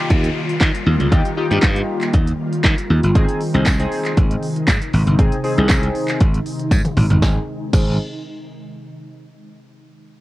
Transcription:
0.00 7.18 D#3 medium
0.00 3.11 G3 medium
0.00 3.11 A#3 medium
0.00 0.39 D#4 medium
0.00 0.40 F4 medium
0.00 3.11 F4 medium
0.00 0.40 G4 loud
0.00 downlifter medium
0.10 0.28 D#2 loud
0.10 kick loud
0.10 closed hi-hat medium
0.24 closed hi-hat medium
0.49 closed hi-hat soft
0.60 0.70 D#3 loud
0.60 kick loud
0.60 snare medium
0.60 clap loud
0.60 closed hi-hat medium
0.75 closed hi-hat medium
0.86 0.96 D#2 medium
1.00 1.08 C#2 medium
1.00 closed hi-hat medium
1.12 1.21 D#2 loud
1.12 1.29 D#4 medium
1.12 1.29 F4 medium
1.12 1.29 G4 loud
1.12 kick loud
1.12 closed hi-hat medium
1.25 closed hi-hat medium
1.37 1.46 D#4 medium
1.37 1.46 F4 medium
1.37 1.46 G4 loud
1.50 1.59 G2 medium
1.50 2.17 D#4 medium
1.50 2.17 F4 medium
1.50 2.18 G4 loud
1.50 closed hi-hat soft
1.62 1.81 G2 loud
1.62 kick loud
1.62 snare loud
1.62 clap loud
1.62 closed hi-hat medium
1.76 closed hi-hat medium
2.01 clap medium
2.01 closed hi-hat soft
2.14 2.32 D#2 loud
2.14 kick loud
2.14 closed hi-hat medium
2.27 closed hi-hat medium
2.53 closed hi-hat soft
2.64 2.74 D#3 loud
2.64 kick loud
2.64 snare medium
2.64 clap loud
2.64 closed hi-hat medium
2.78 closed hi-hat medium
2.90 2.99 D#2 medium
3.03 3.12 G1 medium
3.03 closed hi-hat medium
3.15 3.25 G#1 loud
3.15 7.18 C3 medium
3.15 7.18 G#3 medium
3.15 3.41 C4 medium
3.15 3.41 D#4 medium
3.15 7.18 D#4 medium
3.15 3.41 G#4 loud
3.15 kick loud
3.15 closed hi-hat medium
3.29 closed hi-hat medium
3.41 open hi-hat medium
3.54 3.63 C2 medium
3.54 3.70 C4 medium
3.54 3.71 D#4 medium
3.54 3.71 G#4 loud
3.54 closed hi-hat soft
3.65 3.84 C2 medium
3.65 kick loud
3.65 snare loud
3.65 clap loud
3.65 closed hi-hat medium
3.65 tambourine loud
3.79 4.46 C4 medium
3.79 4.46 D#4 medium
3.79 4.47 G#4 loud
3.79 closed hi-hat medium
3.92 open hi-hat medium
4.05 clap medium
4.05 closed hi-hat soft
4.17 4.35 G#1 loud
4.17 kick loud
4.17 closed hi-hat medium
4.31 closed hi-hat medium
4.43 open hi-hat medium
4.56 closed hi-hat soft
4.67 4.77 G#2 loud
4.67 kick loud
4.67 snare medium
4.67 clap loud
4.67 closed hi-hat medium
4.67 tambourine medium
4.82 closed hi-hat medium
4.93 5.03 G#1 medium
4.93 open hi-hat medium
5.07 5.15 G1 medium
5.07 closed hi-hat soft
5.18 5.36 C4 medium
5.18 5.36 D#4 medium
5.18 5.36 G#4 loud
5.18 kick loud
5.18 closed hi-hat medium
5.32 closed hi-hat medium
5.44 5.53 C4 medium
5.44 5.53 D#4 medium
5.44 5.53 G#4 loud
5.44 open hi-hat medium
5.57 5.66 C2 medium
5.57 6.24 C4 medium
5.57 6.24 D#4 medium
5.57 6.25 G#4 loud
5.57 closed hi-hat soft
5.69 5.87 C2 medium
5.69 kick loud
5.69 snare loud
5.69 clap loud
5.69 closed hi-hat medium
5.69 tambourine loud
5.83 closed hi-hat medium
5.95 open hi-hat medium
6.08 clap medium
6.08 closed hi-hat soft
6.20 6.38 G#1 loud
6.20 kick loud
6.20 closed hi-hat medium
6.34 closed hi-hat medium
6.46 open hi-hat medium
6.59 closed hi-hat soft
6.71 6.81 G#2 loud
6.71 kick loud
6.71 closed hi-hat medium
6.71 high tom medium
6.71 tambourine medium
6.85 closed hi-hat medium
6.85 mid tom medium
6.97 7.06 G#1 medium
6.97 mid tom loud
6.97 open hi-hat medium
7.10 7.19 G1 medium
7.10 closed hi-hat soft
7.10 floor tom medium
7.22 7.37 G#1 loud
7.22 7.37 C4 medium
7.22 7.37 D#4 medium
7.22 7.37 G#4 medium
7.22 kick loud
7.22 snare medium
7.22 tambourine medium
7.73 7.97 G#1 loud
7.73 7.97 C4 medium
7.73 7.97 D#4 medium
7.73 7.97 G#4 medium
7.73 kick loud
7.73 crash medium
7.73 tambourine medium

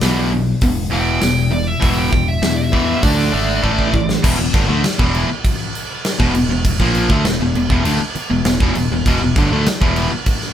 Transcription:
0.00 0.53 B1 medium
0.00 0.30 E2 medium
0.00 0.30 B2 loud
0.00 0.31 E3 loud
0.00 0.28 D5 medium
0.00 snare loud
0.00 open hi-hat medium
0.32 0.59 E2 medium
0.32 0.59 B2 medium
0.61 0.87 E1 medium
0.61 0.89 E2 medium
0.61 0.89 B2 medium
0.61 kick loud
0.61 open hi-hat medium
0.91 1.18 E1 medium
0.91 1.20 E2 medium
0.91 1.20 B2 medium
0.91 1.20 E3 medium
0.91 1.51 G5 medium
1.21 1.74 E1 loud
1.21 1.49 E2 medium
1.21 1.49 B2 medium
1.21 snare loud
1.21 open hi-hat medium
1.51 1.79 E2 medium
1.51 1.79 B2 medium
1.51 1.67 D5 loud
1.67 1.97 E5 medium
1.80 2.08 E1 medium
1.80 2.10 E2 loud
1.80 2.10 B2 loud
1.80 2.10 E3 loud
1.80 kick loud
1.80 open hi-hat medium
1.98 2.27 G5 medium
2.12 2.38 E1 medium
2.12 2.39 E2 medium
2.12 2.40 B2 medium
2.12 kick medium
2.28 2.56 E5 medium
2.42 2.70 E2 medium
2.42 2.94 E2 loud
2.42 2.70 B2 medium
2.42 snare loud
2.42 open hi-hat medium
2.57 3.01 E5 loud
2.72 3.01 E2 medium
2.72 3.01 B2 medium
2.72 3.01 E3 loud
2.72 kick medium
3.02 3.29 D2 medium
3.02 3.31 D3 loud
3.02 3.31 A3 medium
3.02 3.32 D4 loud
3.02 4.20 D5 loud
3.02 kick loud
3.02 open hi-hat medium
3.19 snare soft
3.33 3.59 G#1 loud
3.33 3.61 D3 medium
3.33 3.62 A3 medium
3.33 3.62 D4 medium
3.62 4.15 A1 medium
3.62 3.91 A2 loud
3.62 3.92 E3 loud
3.62 3.92 A3 medium
3.62 kick medium
3.79 kick medium
3.93 4.20 A2 medium
3.93 4.21 E3 medium
3.93 kick medium
4.09 snare medium
4.23 4.38 E1 medium
4.23 4.37 E2 medium
4.23 4.38 B2 loud
4.23 kick loud
4.23 crash loud
4.23 crash medium
4.39 4.53 E1 medium
4.39 4.53 E2 medium
4.39 4.54 B2 medium
4.54 4.68 G1 medium
4.54 4.68 G2 loud
4.54 4.67 D3 loud
4.54 kick loud
4.54 crash medium
4.68 4.83 D2 loud
4.68 4.83 D3 medium
4.68 4.83 A3 loud
4.83 muted distorted electric guitar stroke medium
4.83 muted fingered electric bass stroke soft
4.83 snare loud
4.83 crash medium
4.98 5.27 E1 loud
4.98 5.28 E2 medium
4.98 5.28 B2 medium
4.98 5.28 E3 loud
4.98 kick loud
5.15 crash medium
5.30 muted distorted electric guitar stroke medium
5.45 kick loud
5.45 crash medium
5.75 crash medium
6.05 snare loud
6.05 crash medium
6.19 6.33 E1 medium
6.19 6.33 E2 medium
6.19 6.34 B2 loud
6.19 kick loud
6.34 6.48 E1 medium
6.34 6.48 E2 soft
6.34 6.49 B2 medium
6.34 crash medium
6.49 6.77 E1 medium
6.49 6.74 E2 medium
6.49 6.74 B2 medium
6.65 kick loud
6.65 crash medium
6.80 7.08 A#1 loud
6.80 7.09 A#2 medium
6.80 7.09 F3 medium
6.80 7.10 A#3 medium
6.80 kick medium
6.95 crash medium
7.10 7.24 D2 loud
7.10 7.25 D3 medium
7.10 7.25 A3 medium
7.10 kick loud
7.25 7.39 E1 medium
7.25 7.40 E2 medium
7.25 7.40 B2 medium
7.25 snare loud
7.25 crash medium
7.40 7.54 E1 medium
7.40 7.55 E2 medium
7.40 7.55 B2 medium
7.55 7.69 E1 medium
7.55 7.69 E2 medium
7.55 7.70 B2 medium
7.55 crash medium
7.70 7.84 E1 medium
7.70 7.85 E2 loud
7.70 7.84 B2 loud
7.70 kick medium
7.84 7.99 D2 medium
7.84 7.99 D3 loud
7.84 7.99 A3 loud
7.84 crash medium
8.00 muted fingered electric bass stroke soft
8.00 muted distorted electric guitar stroke medium
8.15 muted fingered electric bass stroke soft
8.15 muted distorted electric guitar stroke medium
8.15 crash medium
8.30 8.45 E1 medium
8.30 8.45 E2 medium
8.30 8.45 B2 medium
8.45 8.60 E1 medium
8.45 8.60 E2 medium
8.45 8.61 B2 medium
8.45 snare loud
8.45 crash medium
8.60 8.75 E1 loud
8.60 8.75 E2 loud
8.60 8.75 B2 loud
8.60 kick loud
8.75 8.90 E1 medium
8.75 8.91 E2 medium
8.75 8.91 B2 medium
8.75 crash medium
8.92 9.05 E1 medium
8.92 9.05 E2 medium
8.92 9.06 B2 medium
9.06 9.20 E1 medium
9.06 9.20 E2 loud
9.06 9.20 B2 loud
9.06 kick loud
9.06 crash medium
9.22 9.35 E1 medium
9.22 9.36 E2 medium
9.22 9.37 B2 medium
9.36 9.50 G1 loud
9.36 9.51 G2 loud
9.36 9.51 D3 loud
9.36 kick loud
9.36 crash medium
9.52 9.66 D2 loud
9.52 9.66 D3 loud
9.52 9.66 A3 loud
9.66 muted fingered electric bass stroke soft
9.66 muted distorted electric guitar stroke medium
9.66 snare loud
9.66 crash medium
9.81 10.09 E1 medium
9.81 10.10 E2 medium
9.81 10.11 B2 loud
9.81 10.11 E3 loud
9.81 kick loud
9.96 crash medium
10.12 muted distorted electric guitar stroke medium
10.26 kick loud
10.26 crash medium
10.41 snare soft

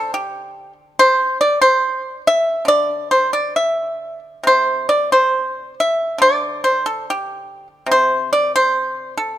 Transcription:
0.00 1.80 D3 medium
0.00 0.12 A4 medium
0.14 0.73 G4 medium
0.99 1.37 C5 loud
1.41 1.59 D5 medium
1.61 2.21 C5 medium
2.27 2.65 E5 medium
2.65 5.32 D3 medium
2.65 3.08 D5 medium
3.11 3.31 C5 medium
3.33 3.53 D5 medium
3.56 4.19 E5 medium
4.43 6.20 C3 soft
4.43 4.87 C5 medium
4.89 5.10 D5 medium
5.12 5.74 C5 medium
5.80 6.19 E5 medium
6.18 8.72 D3 medium
6.18 6.61 D5 medium
6.64 6.83 C5 medium
6.86 7.05 A4 medium
7.10 7.67 G4 medium
7.86 9.38 C3 medium
7.91 8.29 C5 medium
8.33 8.51 D5 medium
8.56 9.13 C5 medium
9.17 9.38 A4 medium

